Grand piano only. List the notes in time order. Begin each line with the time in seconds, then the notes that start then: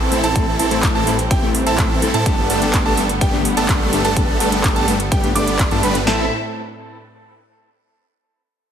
Already playing: A5
0.24 A5
0.36 A5
0.59 A5
0.95 A5
1.31 G5
1.66 A5
2.14 A5
2.26 A5
2.50 A5
2.86 A5
3.21 G5
3.57 A5
4.05 A5
4.16 A5
4.40 A5
4.76 A5
5.12 G5
5.35 D6
5.71 A5
5.83 B5
6.07 A5